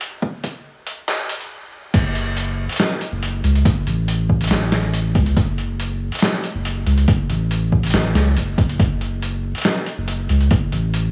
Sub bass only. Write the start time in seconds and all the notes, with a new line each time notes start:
1.94 F#1
3.12 F#1
3.44 C#2
3.65 F#1
3.87 A1
4.51 A1
5.15 C#2
5.37 F#1
6.55 F#1
6.86 C#2
7.08 F#1
7.29 A1
7.94 A1
8.15 C#2
8.37 F#1
8.80 F#1
9.98 F#1
10.30 C#2
10.51 F#1
10.72 A1